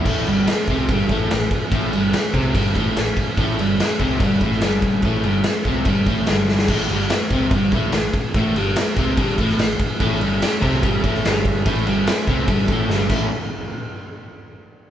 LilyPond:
<<
  \new Staff \with { instrumentName = "Tonewheel organ" } { \time 4/4 \key a \mixolydian \tempo 4 = 145 <cis' a' e''>1~ | <cis' a' e''>1 | <cis' a' e''>1~ | <cis' a' e''>1 |
r1 | r1 | <cis' a' e''>1~ | <cis' a' e''>2.~ <cis' a' e''>8 <cis' a' e''>8 |
r1 | }
  \new Staff \with { instrumentName = "Overdriven electric guitar" } { \clef bass \time 4/4 \key a \mixolydian <a, a>8 <g, g>8 r8 <c c'>8 <g, g>8 <a, a>8 a,8 r8 | <a, a>8 <g, g>8 r8 <c c'>8 <g, g>8 <a, a>8 a,8 r8 | <a, a>8 <g, g>8 r8 <c c'>8 <g, g>8 <a, a>8 <g, g>4 | <a, a>8 <g, g>8 r8 <c c'>8 <g, g>8 <a, a>8 <g, g>4 |
<a, a>8 <g, g>8 r8 <c c'>8 <g, g>8 <a, a>8 a,8 r8 | <a, a>8 <g, g>8 r8 <c c'>8 <g, g>8 <a, a>8 a,8 r8 | <a, a>8 <g, g>8 r8 <c c'>8 <g, g>8 <a, a>8 <g, g>4 | <a, a>8 <g, g>8 r8 <c c'>8 <g, g>8 <a, a>8 <g, g>8 <a, e a cis' e'>8 |
r1 | }
  \new Staff \with { instrumentName = "Fingered electric bass" } { \clef bass \time 4/4 \key a \mixolydian a,,8 g,,8 r8 c,8 g,,8 a,,8 a,,8 r8 | a,,8 g,,8 r8 c,8 g,,8 a,,8 a,,8 r8 | a,,8 g,,8 r8 c,8 g,,8 a,,8 g,,4 | a,,8 g,,8 r8 c,8 g,,8 a,,8 g,,4 |
a,,8 g,,8 r8 c,8 g,,8 a,,8 a,,8 r8 | a,,8 g,,8 r8 c,8 g,,8 a,,8 a,,8 r8 | a,,8 g,,8 r8 c,8 g,,8 a,,8 g,,4 | a,,8 g,,8 r8 c,8 g,,8 a,,8 g,,8 a,,8 |
r1 | }
  \new DrumStaff \with { instrumentName = "Drums" } \drummode { \time 4/4 <cymc bd>8 cymc8 <cymc sn>8 <cymc bd>8 <cymc bd>8 <cymc bd>8 <cymc sn>8 <cymc bd>8 | <cymc bd>8 cymc8 <cymc sn>8 <cymc bd>8 <cymc bd>8 <cymc bd>8 <cymc sn>8 <cymc bd>8 | <cymc bd>8 cymc8 <cymc sn>8 <cymc bd>8 <cymc bd>8 <cymc bd>16 sn16 <cymc sn>8 <cymc bd>8 | <cymc bd>8 cymc8 <cymc sn>8 <cymc bd>8 <cymc bd>8 <cymc bd>8 <cymc sn>8 sn16 sn16 |
<cymc bd>8 cymc8 <cymc sn>8 <cymc bd>8 <cymc bd>8 <cymc bd>8 <cymc sn>8 <cymc bd>8 | <cymc bd>8 cymc8 <cymc sn>8 <cymc bd>8 <cymc bd>8 <cymc bd>16 sn16 <cymc sn>8 <cymc bd>8 | <cymc bd>8 cymc8 <cymc sn>8 <cymc bd>8 <cymc bd>8 <cymc bd>16 sn16 <cymc sn>8 <cymc bd>8 | <cymc bd>8 cymc8 <cymc sn>8 <cymc bd>8 <cymc bd>8 <cymc bd>8 sn8 <cymc bd>8 |
r4 r4 r4 r4 | }
>>